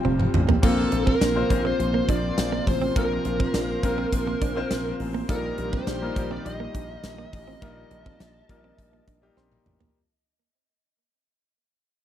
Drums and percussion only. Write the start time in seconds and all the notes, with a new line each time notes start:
0.05 high tom
0.20 mid tom
0.34 mid tom
0.49 floor tom
0.63 kick, crash
0.92 closed hi-hat
1.07 kick
1.21 snare, closed hi-hat, tambourine
1.50 kick, closed hi-hat
1.80 closed hi-hat
2.09 kick, closed hi-hat
2.38 snare, closed hi-hat, tambourine
2.67 kick, open hi-hat
2.96 kick, closed hi-hat
3.25 closed hi-hat
3.40 kick
3.54 snare, closed hi-hat, tambourine
3.83 kick, closed hi-hat
4.12 kick, closed hi-hat
4.42 kick, closed hi-hat
4.71 snare, closed hi-hat, tambourine
5.00 open hi-hat
5.29 kick, closed hi-hat
5.58 closed hi-hat
5.73 kick
5.87 snare, closed hi-hat, tambourine
6.16 kick, closed hi-hat
6.46 closed hi-hat
6.75 kick, closed hi-hat
7.04 snare, closed hi-hat, tambourine
7.33 kick, open hi-hat
7.62 kick, closed hi-hat
7.91 closed hi-hat
8.06 kick
8.20 snare, closed hi-hat, tambourine
8.49 kick, closed hi-hat
8.78 kick, closed hi-hat
9.08 kick, closed hi-hat
9.37 snare
9.52 high tom
9.66 mid tom
9.81 floor tom